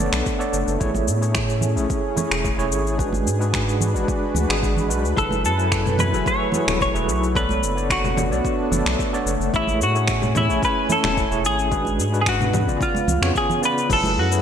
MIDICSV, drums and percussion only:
0, 0, Header, 1, 2, 480
1, 0, Start_track
1, 0, Tempo, 545455
1, 708, Time_signature, 4, 2, 24, 8
1, 12689, End_track
2, 0, Start_track
2, 0, Title_t, "Drums"
2, 111, Note_on_c, 9, 26, 74
2, 116, Note_on_c, 9, 69, 33
2, 199, Note_off_c, 9, 26, 0
2, 204, Note_off_c, 9, 69, 0
2, 231, Note_on_c, 9, 69, 41
2, 232, Note_on_c, 9, 36, 98
2, 319, Note_off_c, 9, 69, 0
2, 320, Note_off_c, 9, 36, 0
2, 359, Note_on_c, 9, 69, 31
2, 447, Note_off_c, 9, 69, 0
2, 471, Note_on_c, 9, 69, 73
2, 559, Note_off_c, 9, 69, 0
2, 596, Note_on_c, 9, 69, 33
2, 684, Note_off_c, 9, 69, 0
2, 711, Note_on_c, 9, 36, 100
2, 712, Note_on_c, 9, 69, 44
2, 799, Note_off_c, 9, 36, 0
2, 800, Note_off_c, 9, 69, 0
2, 831, Note_on_c, 9, 63, 87
2, 838, Note_on_c, 9, 69, 31
2, 919, Note_off_c, 9, 63, 0
2, 926, Note_off_c, 9, 69, 0
2, 949, Note_on_c, 9, 69, 78
2, 1037, Note_off_c, 9, 69, 0
2, 1078, Note_on_c, 9, 69, 34
2, 1166, Note_off_c, 9, 69, 0
2, 1185, Note_on_c, 9, 26, 74
2, 1190, Note_on_c, 9, 69, 44
2, 1191, Note_on_c, 9, 36, 102
2, 1273, Note_off_c, 9, 26, 0
2, 1278, Note_off_c, 9, 69, 0
2, 1279, Note_off_c, 9, 36, 0
2, 1316, Note_on_c, 9, 69, 31
2, 1404, Note_off_c, 9, 69, 0
2, 1418, Note_on_c, 9, 64, 73
2, 1429, Note_on_c, 9, 69, 67
2, 1506, Note_off_c, 9, 64, 0
2, 1517, Note_off_c, 9, 69, 0
2, 1560, Note_on_c, 9, 69, 33
2, 1648, Note_off_c, 9, 69, 0
2, 1672, Note_on_c, 9, 36, 103
2, 1672, Note_on_c, 9, 69, 41
2, 1760, Note_off_c, 9, 36, 0
2, 1760, Note_off_c, 9, 69, 0
2, 1905, Note_on_c, 9, 63, 57
2, 1912, Note_on_c, 9, 64, 90
2, 1912, Note_on_c, 9, 69, 76
2, 1993, Note_off_c, 9, 63, 0
2, 2000, Note_off_c, 9, 64, 0
2, 2000, Note_off_c, 9, 69, 0
2, 2037, Note_on_c, 9, 26, 77
2, 2042, Note_on_c, 9, 69, 33
2, 2125, Note_off_c, 9, 26, 0
2, 2130, Note_off_c, 9, 69, 0
2, 2151, Note_on_c, 9, 36, 106
2, 2156, Note_on_c, 9, 69, 43
2, 2239, Note_off_c, 9, 36, 0
2, 2244, Note_off_c, 9, 69, 0
2, 2282, Note_on_c, 9, 69, 32
2, 2370, Note_off_c, 9, 69, 0
2, 2394, Note_on_c, 9, 69, 75
2, 2482, Note_off_c, 9, 69, 0
2, 2524, Note_on_c, 9, 69, 32
2, 2612, Note_off_c, 9, 69, 0
2, 2632, Note_on_c, 9, 36, 103
2, 2639, Note_on_c, 9, 69, 43
2, 2720, Note_off_c, 9, 36, 0
2, 2727, Note_off_c, 9, 69, 0
2, 2750, Note_on_c, 9, 63, 81
2, 2766, Note_on_c, 9, 69, 30
2, 2838, Note_off_c, 9, 63, 0
2, 2854, Note_off_c, 9, 69, 0
2, 2880, Note_on_c, 9, 69, 78
2, 2968, Note_off_c, 9, 69, 0
2, 3006, Note_on_c, 9, 69, 32
2, 3094, Note_off_c, 9, 69, 0
2, 3112, Note_on_c, 9, 36, 96
2, 3113, Note_on_c, 9, 26, 70
2, 3118, Note_on_c, 9, 69, 41
2, 3200, Note_off_c, 9, 36, 0
2, 3201, Note_off_c, 9, 26, 0
2, 3206, Note_off_c, 9, 69, 0
2, 3246, Note_on_c, 9, 69, 32
2, 3334, Note_off_c, 9, 69, 0
2, 3349, Note_on_c, 9, 64, 76
2, 3358, Note_on_c, 9, 69, 70
2, 3437, Note_off_c, 9, 64, 0
2, 3446, Note_off_c, 9, 69, 0
2, 3484, Note_on_c, 9, 69, 31
2, 3572, Note_off_c, 9, 69, 0
2, 3593, Note_on_c, 9, 36, 98
2, 3597, Note_on_c, 9, 69, 42
2, 3681, Note_off_c, 9, 36, 0
2, 3685, Note_off_c, 9, 69, 0
2, 3826, Note_on_c, 9, 63, 65
2, 3826, Note_on_c, 9, 64, 70
2, 3838, Note_on_c, 9, 69, 71
2, 3914, Note_off_c, 9, 63, 0
2, 3914, Note_off_c, 9, 64, 0
2, 3926, Note_off_c, 9, 69, 0
2, 3961, Note_on_c, 9, 26, 75
2, 3966, Note_on_c, 9, 69, 32
2, 4049, Note_off_c, 9, 26, 0
2, 4054, Note_off_c, 9, 69, 0
2, 4072, Note_on_c, 9, 36, 98
2, 4081, Note_on_c, 9, 69, 42
2, 4160, Note_off_c, 9, 36, 0
2, 4169, Note_off_c, 9, 69, 0
2, 4194, Note_on_c, 9, 64, 70
2, 4207, Note_on_c, 9, 69, 31
2, 4282, Note_off_c, 9, 64, 0
2, 4295, Note_off_c, 9, 69, 0
2, 4319, Note_on_c, 9, 69, 73
2, 4407, Note_off_c, 9, 69, 0
2, 4446, Note_on_c, 9, 69, 32
2, 4534, Note_off_c, 9, 69, 0
2, 4552, Note_on_c, 9, 36, 95
2, 4556, Note_on_c, 9, 69, 40
2, 4640, Note_off_c, 9, 36, 0
2, 4644, Note_off_c, 9, 69, 0
2, 4668, Note_on_c, 9, 63, 78
2, 4684, Note_on_c, 9, 69, 31
2, 4756, Note_off_c, 9, 63, 0
2, 4772, Note_off_c, 9, 69, 0
2, 4796, Note_on_c, 9, 69, 75
2, 4884, Note_off_c, 9, 69, 0
2, 4921, Note_on_c, 9, 69, 28
2, 5009, Note_off_c, 9, 69, 0
2, 5031, Note_on_c, 9, 36, 91
2, 5032, Note_on_c, 9, 26, 69
2, 5037, Note_on_c, 9, 69, 42
2, 5119, Note_off_c, 9, 36, 0
2, 5120, Note_off_c, 9, 26, 0
2, 5125, Note_off_c, 9, 69, 0
2, 5158, Note_on_c, 9, 64, 57
2, 5163, Note_on_c, 9, 69, 30
2, 5246, Note_off_c, 9, 64, 0
2, 5251, Note_off_c, 9, 69, 0
2, 5262, Note_on_c, 9, 64, 67
2, 5270, Note_off_c, 9, 64, 0
2, 5270, Note_on_c, 9, 64, 64
2, 5275, Note_on_c, 9, 69, 67
2, 5358, Note_off_c, 9, 64, 0
2, 5363, Note_off_c, 9, 69, 0
2, 5402, Note_on_c, 9, 69, 30
2, 5490, Note_off_c, 9, 69, 0
2, 5510, Note_on_c, 9, 36, 101
2, 5517, Note_on_c, 9, 69, 45
2, 5598, Note_off_c, 9, 36, 0
2, 5605, Note_off_c, 9, 69, 0
2, 5736, Note_on_c, 9, 63, 55
2, 5741, Note_on_c, 9, 64, 76
2, 5756, Note_on_c, 9, 69, 76
2, 5824, Note_off_c, 9, 63, 0
2, 5829, Note_off_c, 9, 64, 0
2, 5844, Note_off_c, 9, 69, 0
2, 5878, Note_on_c, 9, 26, 74
2, 5878, Note_on_c, 9, 64, 76
2, 5883, Note_on_c, 9, 69, 35
2, 5966, Note_off_c, 9, 26, 0
2, 5966, Note_off_c, 9, 64, 0
2, 5971, Note_off_c, 9, 69, 0
2, 5992, Note_on_c, 9, 36, 97
2, 5996, Note_on_c, 9, 69, 38
2, 6080, Note_off_c, 9, 36, 0
2, 6084, Note_off_c, 9, 69, 0
2, 6120, Note_on_c, 9, 69, 31
2, 6208, Note_off_c, 9, 69, 0
2, 6239, Note_on_c, 9, 69, 68
2, 6327, Note_off_c, 9, 69, 0
2, 6367, Note_on_c, 9, 69, 31
2, 6455, Note_off_c, 9, 69, 0
2, 6472, Note_on_c, 9, 36, 96
2, 6478, Note_on_c, 9, 69, 38
2, 6560, Note_off_c, 9, 36, 0
2, 6566, Note_off_c, 9, 69, 0
2, 6592, Note_on_c, 9, 63, 76
2, 6604, Note_on_c, 9, 69, 27
2, 6680, Note_off_c, 9, 63, 0
2, 6692, Note_off_c, 9, 69, 0
2, 6718, Note_on_c, 9, 69, 71
2, 6806, Note_off_c, 9, 69, 0
2, 6846, Note_on_c, 9, 69, 30
2, 6934, Note_off_c, 9, 69, 0
2, 6952, Note_on_c, 9, 36, 91
2, 6956, Note_on_c, 9, 26, 72
2, 6961, Note_on_c, 9, 69, 40
2, 7040, Note_off_c, 9, 36, 0
2, 7044, Note_off_c, 9, 26, 0
2, 7049, Note_off_c, 9, 69, 0
2, 7078, Note_on_c, 9, 64, 60
2, 7083, Note_on_c, 9, 69, 29
2, 7166, Note_off_c, 9, 64, 0
2, 7171, Note_off_c, 9, 69, 0
2, 7187, Note_on_c, 9, 64, 62
2, 7193, Note_off_c, 9, 64, 0
2, 7193, Note_on_c, 9, 64, 68
2, 7198, Note_on_c, 9, 69, 65
2, 7281, Note_off_c, 9, 64, 0
2, 7286, Note_off_c, 9, 69, 0
2, 7325, Note_on_c, 9, 69, 31
2, 7413, Note_off_c, 9, 69, 0
2, 7433, Note_on_c, 9, 36, 96
2, 7438, Note_on_c, 9, 69, 40
2, 7521, Note_off_c, 9, 36, 0
2, 7526, Note_off_c, 9, 69, 0
2, 7672, Note_on_c, 9, 64, 76
2, 7675, Note_on_c, 9, 63, 57
2, 7679, Note_on_c, 9, 69, 69
2, 7760, Note_off_c, 9, 64, 0
2, 7763, Note_off_c, 9, 63, 0
2, 7767, Note_off_c, 9, 69, 0
2, 7800, Note_on_c, 9, 26, 76
2, 7805, Note_on_c, 9, 69, 32
2, 7888, Note_off_c, 9, 26, 0
2, 7893, Note_off_c, 9, 69, 0
2, 7913, Note_on_c, 9, 36, 93
2, 7920, Note_on_c, 9, 69, 39
2, 8001, Note_off_c, 9, 36, 0
2, 8008, Note_off_c, 9, 69, 0
2, 8046, Note_on_c, 9, 69, 32
2, 8134, Note_off_c, 9, 69, 0
2, 8157, Note_on_c, 9, 69, 69
2, 8245, Note_off_c, 9, 69, 0
2, 8283, Note_on_c, 9, 69, 31
2, 8371, Note_off_c, 9, 69, 0
2, 8393, Note_on_c, 9, 36, 93
2, 8396, Note_on_c, 9, 69, 39
2, 8481, Note_off_c, 9, 36, 0
2, 8484, Note_off_c, 9, 69, 0
2, 8515, Note_on_c, 9, 63, 73
2, 8523, Note_on_c, 9, 69, 30
2, 8603, Note_off_c, 9, 63, 0
2, 8611, Note_off_c, 9, 69, 0
2, 8637, Note_on_c, 9, 69, 71
2, 8725, Note_off_c, 9, 69, 0
2, 8760, Note_on_c, 9, 69, 29
2, 8848, Note_off_c, 9, 69, 0
2, 8866, Note_on_c, 9, 26, 72
2, 8871, Note_on_c, 9, 69, 41
2, 8872, Note_on_c, 9, 36, 94
2, 8954, Note_off_c, 9, 26, 0
2, 8959, Note_off_c, 9, 69, 0
2, 8960, Note_off_c, 9, 36, 0
2, 8995, Note_on_c, 9, 64, 59
2, 9000, Note_on_c, 9, 69, 30
2, 9083, Note_off_c, 9, 64, 0
2, 9088, Note_off_c, 9, 69, 0
2, 9109, Note_on_c, 9, 64, 70
2, 9114, Note_off_c, 9, 64, 0
2, 9114, Note_on_c, 9, 64, 69
2, 9114, Note_on_c, 9, 69, 68
2, 9202, Note_off_c, 9, 64, 0
2, 9202, Note_off_c, 9, 69, 0
2, 9240, Note_on_c, 9, 69, 30
2, 9328, Note_off_c, 9, 69, 0
2, 9351, Note_on_c, 9, 36, 90
2, 9354, Note_on_c, 9, 69, 40
2, 9439, Note_off_c, 9, 36, 0
2, 9442, Note_off_c, 9, 69, 0
2, 9587, Note_on_c, 9, 64, 76
2, 9590, Note_on_c, 9, 63, 57
2, 9590, Note_on_c, 9, 69, 68
2, 9675, Note_off_c, 9, 64, 0
2, 9678, Note_off_c, 9, 63, 0
2, 9678, Note_off_c, 9, 69, 0
2, 9714, Note_on_c, 9, 26, 80
2, 9714, Note_on_c, 9, 64, 79
2, 9719, Note_on_c, 9, 69, 31
2, 9802, Note_off_c, 9, 26, 0
2, 9802, Note_off_c, 9, 64, 0
2, 9807, Note_off_c, 9, 69, 0
2, 9831, Note_on_c, 9, 36, 89
2, 9833, Note_on_c, 9, 69, 37
2, 9919, Note_off_c, 9, 36, 0
2, 9921, Note_off_c, 9, 69, 0
2, 9960, Note_on_c, 9, 69, 29
2, 10048, Note_off_c, 9, 69, 0
2, 10075, Note_on_c, 9, 69, 71
2, 10163, Note_off_c, 9, 69, 0
2, 10199, Note_on_c, 9, 69, 31
2, 10287, Note_off_c, 9, 69, 0
2, 10310, Note_on_c, 9, 36, 100
2, 10312, Note_on_c, 9, 69, 41
2, 10398, Note_off_c, 9, 36, 0
2, 10400, Note_off_c, 9, 69, 0
2, 10427, Note_on_c, 9, 63, 74
2, 10443, Note_on_c, 9, 69, 29
2, 10515, Note_off_c, 9, 63, 0
2, 10531, Note_off_c, 9, 69, 0
2, 10558, Note_on_c, 9, 69, 71
2, 10646, Note_off_c, 9, 69, 0
2, 10684, Note_on_c, 9, 69, 28
2, 10772, Note_off_c, 9, 69, 0
2, 10790, Note_on_c, 9, 36, 98
2, 10792, Note_on_c, 9, 26, 80
2, 10797, Note_on_c, 9, 69, 40
2, 10878, Note_off_c, 9, 36, 0
2, 10880, Note_off_c, 9, 26, 0
2, 10885, Note_off_c, 9, 69, 0
2, 10919, Note_on_c, 9, 64, 61
2, 10924, Note_on_c, 9, 69, 29
2, 11007, Note_off_c, 9, 64, 0
2, 11012, Note_off_c, 9, 69, 0
2, 11028, Note_on_c, 9, 64, 70
2, 11031, Note_off_c, 9, 64, 0
2, 11031, Note_on_c, 9, 64, 76
2, 11036, Note_on_c, 9, 69, 65
2, 11119, Note_off_c, 9, 64, 0
2, 11124, Note_off_c, 9, 69, 0
2, 11165, Note_on_c, 9, 69, 31
2, 11253, Note_off_c, 9, 69, 0
2, 11270, Note_on_c, 9, 36, 92
2, 11278, Note_on_c, 9, 69, 43
2, 11358, Note_off_c, 9, 36, 0
2, 11366, Note_off_c, 9, 69, 0
2, 11394, Note_on_c, 9, 63, 79
2, 11407, Note_on_c, 9, 69, 32
2, 11482, Note_off_c, 9, 63, 0
2, 11495, Note_off_c, 9, 69, 0
2, 11506, Note_on_c, 9, 63, 56
2, 11509, Note_on_c, 9, 64, 88
2, 11516, Note_on_c, 9, 69, 75
2, 11594, Note_off_c, 9, 63, 0
2, 11597, Note_off_c, 9, 64, 0
2, 11604, Note_off_c, 9, 69, 0
2, 11639, Note_on_c, 9, 26, 85
2, 11644, Note_on_c, 9, 69, 31
2, 11727, Note_off_c, 9, 26, 0
2, 11732, Note_off_c, 9, 69, 0
2, 11750, Note_on_c, 9, 36, 93
2, 11754, Note_on_c, 9, 69, 40
2, 11838, Note_off_c, 9, 36, 0
2, 11842, Note_off_c, 9, 69, 0
2, 11877, Note_on_c, 9, 64, 83
2, 11885, Note_on_c, 9, 69, 29
2, 11965, Note_off_c, 9, 64, 0
2, 11973, Note_off_c, 9, 69, 0
2, 11997, Note_on_c, 9, 69, 73
2, 12085, Note_off_c, 9, 69, 0
2, 12126, Note_on_c, 9, 69, 33
2, 12214, Note_off_c, 9, 69, 0
2, 12230, Note_on_c, 9, 36, 102
2, 12233, Note_on_c, 9, 49, 99
2, 12238, Note_on_c, 9, 69, 53
2, 12318, Note_off_c, 9, 36, 0
2, 12321, Note_off_c, 9, 49, 0
2, 12326, Note_off_c, 9, 69, 0
2, 12352, Note_on_c, 9, 63, 86
2, 12366, Note_on_c, 9, 69, 32
2, 12440, Note_off_c, 9, 63, 0
2, 12454, Note_off_c, 9, 69, 0
2, 12602, Note_on_c, 9, 69, 64
2, 12689, Note_off_c, 9, 69, 0
2, 12689, End_track
0, 0, End_of_file